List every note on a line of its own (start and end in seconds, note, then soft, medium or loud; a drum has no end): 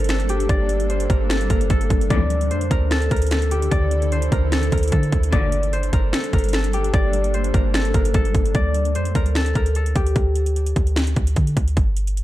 0.00 0.47 G1 loud
0.00 2.07 G3 medium
0.00 2.07 A#3 medium
0.00 5.29 D4 medium
0.00 2.07 A4 medium
0.00 0.15 A#4 medium
0.00 0.89 C5 medium
0.00 0.49 D5 loud
0.04 closed hi-hat medium
0.09 1.16 A4 medium
0.09 finger snap medium
0.09 snare loud
0.09 closed hi-hat medium
0.20 closed hi-hat medium
0.29 2.65 G4 medium
0.29 closed hi-hat medium
0.40 closed hi-hat medium
0.49 1.07 G1 loud
0.49 2.10 D5 loud
0.49 kick loud
0.49 closed hi-hat medium
0.69 closed hi-hat medium
0.80 closed hi-hat medium
0.90 2.50 C5 medium
0.90 closed hi-hat medium
1.00 closed hi-hat medium
1.10 1.48 G1 loud
1.10 1.35 A#4 medium
1.10 kick loud
1.10 closed hi-hat medium
1.29 1.56 A4 loud
1.29 finger snap medium
1.29 snare loud
1.29 closed hi-hat medium
1.41 closed hi-hat medium
1.50 1.69 G1 loud
1.50 1.76 A#4 medium
1.50 kick medium
1.50 closed hi-hat medium
1.61 closed hi-hat medium
1.70 1.89 G1 loud
1.70 2.77 A4 medium
1.70 kick loud
1.70 closed hi-hat medium
1.81 closed hi-hat medium
1.90 2.10 G1 loud
1.90 kick loud
1.90 closed hi-hat medium
2.01 closed hi-hat medium
2.10 2.52 D2 loud
2.10 2.49 F2 loud
2.10 2.49 A2 loud
2.10 5.29 D3 medium
2.10 2.49 E3 loud
2.10 5.29 E4 medium
2.10 5.29 A4 medium
2.10 3.71 D5 loud
2.10 kick loud
2.10 closed hi-hat medium
2.30 closed hi-hat medium
2.41 closed hi-hat medium
2.51 2.70 F2 loud
2.51 4.12 C5 medium
2.51 closed hi-hat medium
2.61 closed hi-hat medium
2.71 3.09 D2 loud
2.71 2.98 A#4 loud
2.71 kick loud
2.71 closed hi-hat medium
2.91 3.17 A4 medium
2.91 finger snap medium
2.91 snare loud
2.91 closed hi-hat medium
3.02 closed hi-hat medium
3.11 3.69 D2 loud
3.11 3.38 A#4 medium
3.11 kick medium
3.11 closed hi-hat medium
3.16 closed hi-hat medium
3.22 closed hi-hat medium
3.27 closed hi-hat medium
3.31 4.38 A4 medium
3.31 finger snap medium
3.31 snare loud
3.31 closed hi-hat medium
3.42 closed hi-hat medium
3.51 5.87 G4 medium
3.51 closed hi-hat medium
3.62 closed hi-hat medium
3.71 4.29 D2 loud
3.71 5.32 D5 loud
3.71 kick loud
3.71 closed hi-hat medium
3.91 closed hi-hat medium
4.02 closed hi-hat medium
4.12 5.73 C5 loud
4.12 closed hi-hat medium
4.22 closed hi-hat medium
4.32 4.71 D2 loud
4.32 4.58 A#4 medium
4.32 kick loud
4.32 closed hi-hat medium
4.52 4.78 A4 loud
4.52 finger snap medium
4.52 snare loud
4.52 closed hi-hat medium
4.63 closed hi-hat medium
4.72 4.92 D2 loud
4.72 4.98 A#4 medium
4.72 kick medium
4.72 closed hi-hat medium
4.78 closed hi-hat medium
4.83 closed hi-hat medium
4.88 closed hi-hat medium
4.92 5.12 D3 loud
4.92 5.99 A4 medium
4.92 kick loud
4.92 closed hi-hat medium
5.03 closed hi-hat medium
5.12 5.32 D2 loud
5.12 kick loud
5.12 closed hi-hat medium
5.23 closed hi-hat medium
5.32 5.91 G1 loud
5.32 5.71 D2 loud
5.32 5.71 A#2 loud
5.32 5.71 D3 loud
5.32 8.51 G3 medium
5.32 8.51 A#3 loud
5.32 8.51 D4 medium
5.32 8.51 A4 medium
5.32 6.93 D5 loud
5.32 kick loud
5.32 closed hi-hat medium
5.52 closed hi-hat medium
5.63 closed hi-hat medium
5.73 7.34 C5 medium
5.73 closed hi-hat medium
5.83 closed hi-hat medium
5.93 6.12 G1 loud
5.93 6.19 A#4 medium
5.93 kick loud
5.93 closed hi-hat medium
6.13 6.39 A4 medium
6.13 finger snap medium
6.13 snare loud
6.13 closed hi-hat medium
6.24 closed hi-hat medium
6.33 6.91 G1 loud
6.33 6.60 A#4 medium
6.33 kick medium
6.33 closed hi-hat medium
6.38 closed hi-hat medium
6.44 closed hi-hat medium
6.49 closed hi-hat medium
6.53 7.60 A4 medium
6.53 finger snap medium
6.53 snare loud
6.53 closed hi-hat medium
6.64 closed hi-hat medium
6.73 9.09 G4 medium
6.73 closed hi-hat medium
6.84 closed hi-hat medium
6.94 7.52 G1 loud
6.94 8.54 D5 loud
6.94 kick loud
6.94 closed hi-hat medium
7.13 closed hi-hat medium
7.24 closed hi-hat medium
7.34 8.95 C5 medium
7.34 closed hi-hat medium
7.44 closed hi-hat medium
7.54 7.93 G1 loud
7.54 7.80 A#4 medium
7.54 kick loud
7.54 closed hi-hat medium
7.74 8.00 A4 loud
7.74 finger snap medium
7.74 snare loud
7.74 closed hi-hat medium
7.85 closed hi-hat medium
7.94 8.14 G1 loud
7.94 8.21 A#4 medium
7.94 kick medium
7.94 closed hi-hat medium
8.05 closed hi-hat medium
8.14 8.34 G1 loud
8.14 9.21 A4 medium
8.14 kick loud
8.14 closed hi-hat medium
8.25 closed hi-hat medium
8.35 8.54 G1 loud
8.35 kick loud
8.35 closed hi-hat medium
8.46 closed hi-hat medium
8.55 8.96 D2 loud
8.55 10.39 D5 medium
8.55 kick loud
8.55 closed hi-hat medium
8.74 closed hi-hat medium
8.85 closed hi-hat medium
8.95 9.14 F2 loud
8.95 10.93 C5 medium
8.95 closed hi-hat medium
9.05 closed hi-hat medium
9.15 9.54 D2 loud
9.15 9.42 A#4 loud
9.15 kick medium
9.15 closed hi-hat medium
9.26 closed hi-hat soft
9.35 9.62 A4 medium
9.35 finger snap medium
9.35 snare loud
9.35 closed hi-hat medium
9.46 closed hi-hat medium
9.55 9.94 D2 loud
9.55 9.82 A#4 medium
9.55 kick medium
9.55 closed hi-hat medium
9.66 closed hi-hat medium
9.75 11.96 A4 medium
9.75 closed hi-hat medium
9.86 closed hi-hat medium
9.95 10.15 D2 loud
9.95 12.23 G4 medium
9.95 kick loud
9.95 closed hi-hat medium
10.07 closed hi-hat medium
10.16 10.74 D2 loud
10.16 kick loud
10.16 closed hi-hat medium
10.36 closed hi-hat medium
10.46 closed hi-hat medium
10.56 closed hi-hat medium
10.66 closed hi-hat medium
10.76 11.15 D2 loud
10.76 kick medium
10.76 closed hi-hat medium
10.87 closed hi-hat soft
10.96 finger snap medium
10.96 snare loud
10.96 closed hi-hat medium
11.07 closed hi-hat medium
11.16 11.36 D2 loud
11.16 kick medium
11.16 closed hi-hat medium
11.27 closed hi-hat medium
11.36 11.56 D3 loud
11.36 kick loud
11.36 closed hi-hat medium
11.47 closed hi-hat medium
11.57 11.76 D2 loud
11.57 kick medium
11.57 closed hi-hat medium
11.68 closed hi-hat medium
11.77 12.23 G1 loud
11.77 kick loud
11.77 closed hi-hat medium
11.97 closed hi-hat medium
12.07 closed hi-hat medium
12.17 closed hi-hat medium